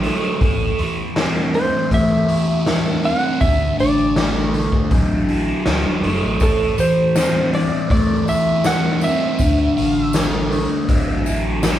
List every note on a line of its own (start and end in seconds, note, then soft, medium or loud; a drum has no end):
0.00 0.42 D3 medium
0.00 0.42 F#3 medium
0.00 1.16 A3 medium
0.00 2.28 E4 medium
0.00 open hi-hat soft
0.41 0.70 A1 medium
0.41 2.29 A2 medium
0.41 kick loud
0.41 open hi-hat medium
0.78 1.66 E2 medium
0.78 1.53 E3 medium
0.78 open hi-hat soft
1.16 3.03 C4 medium
1.16 snare loud
1.16 open hi-hat medium
1.53 3.41 E3 medium
1.53 1.90 C5 medium
1.53 open hi-hat medium
1.91 3.07 E2 medium
1.91 2.66 A3 medium
1.91 3.01 E5 medium
1.91 kick medium
1.91 open hi-hat medium
2.29 3.45 E4 medium
2.29 open hi-hat medium
2.66 4.17 A3 medium
2.66 snare medium
2.66 open hi-hat medium
3.04 3.42 C4 medium
3.04 3.43 F#5 medium
3.04 open hi-hat soft
3.41 3.70 D2 loud
3.41 3.78 D3 medium
3.41 3.80 E5 medium
3.41 kick medium
3.41 open hi-hat medium
3.79 4.65 A1 medium
3.79 4.53 D3 medium
3.79 4.51 D5 medium
3.79 open hi-hat soft
4.16 6.04 A3 medium
4.16 snare loud
4.16 open hi-hat medium
4.54 6.41 D3 medium
4.54 open hi-hat soft
4.72 kick medium
4.91 5.49 A1 medium
4.91 5.65 F#3 medium
4.91 kick loud
4.91 open hi-hat medium
5.29 8.28 E4 medium
5.29 open hi-hat soft
5.66 5.83 D2 medium
5.66 6.41 F#3 medium
5.66 snare loud
5.66 open hi-hat medium
5.85 6.02 E1 medium
6.03 6.20 F#1 medium
6.03 7.16 A3 medium
6.03 open hi-hat soft
6.22 6.39 A1 medium
6.40 6.70 A1 medium
6.40 8.28 A2 medium
6.40 6.77 A4 medium
6.40 kick loud
6.40 open hi-hat medium
6.40 tambourine medium
6.78 7.65 E2 medium
6.78 7.53 E3 medium
6.78 7.50 C5 medium
6.78 open hi-hat soft
6.78 tambourine medium
7.16 9.02 C4 medium
7.16 snare loud
7.16 open hi-hat medium
7.16 tambourine medium
7.53 9.39 E3 medium
7.53 7.90 D5 medium
7.53 open hi-hat medium
7.90 9.05 E2 medium
7.90 8.64 A3 medium
7.90 8.26 D5 medium
7.90 kick loud
7.90 open hi-hat medium
8.28 9.43 E4 medium
8.28 8.67 E5 medium
8.28 open hi-hat soft
8.28 tambourine medium
8.64 10.14 A3 medium
8.64 9.01 F#5 medium
8.64 snare loud
8.64 open hi-hat medium
8.64 tambourine medium
9.01 9.40 C4 medium
9.01 9.82 E5 medium
9.01 open hi-hat medium
9.01 tambourine medium
9.39 9.68 D2 medium
9.39 9.76 D3 medium
9.39 kick medium
9.39 open hi-hat medium
9.39 tambourine medium
9.77 10.63 A1 medium
9.77 10.50 D3 medium
9.77 open hi-hat medium
9.82 10.03 F5 medium
10.03 10.25 E5 medium
10.13 11.79 A3 medium
10.13 snare loud
10.13 open hi-hat medium
10.13 tambourine medium
10.25 10.46 F5 medium
10.46 11.23 E5 medium
10.51 11.79 D3 medium
10.51 open hi-hat soft
10.88 11.79 A1 medium
10.88 11.62 F#3 medium
10.88 kick medium
10.88 open hi-hat medium
11.26 11.79 E4 medium
11.26 open hi-hat soft
11.26 tambourine medium
11.63 11.79 F#3 medium
11.63 snare loud
11.63 open hi-hat medium
11.63 tambourine medium